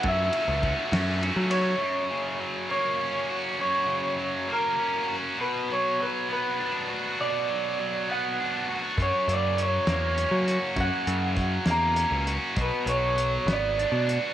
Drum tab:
RD |xxxxxx|------|------|------|
HH |------|------|------|------|
SD |---o--|------|------|------|
BD |o-o---|------|------|------|

RD |------|------|------|------|
HH |------|xxxxxx|xxxxxx|xxxxxx|
SD |------|---o--|---o--|---o--|
BD |------|o-----|o-o---|o-----|